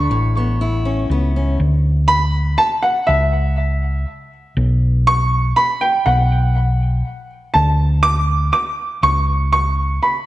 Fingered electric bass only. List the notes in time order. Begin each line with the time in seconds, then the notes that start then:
0.10 A1
1.10 C#2
1.60 D2
3.09 C#2
4.57 B1
6.06 B1
7.55 D2
9.03 C#2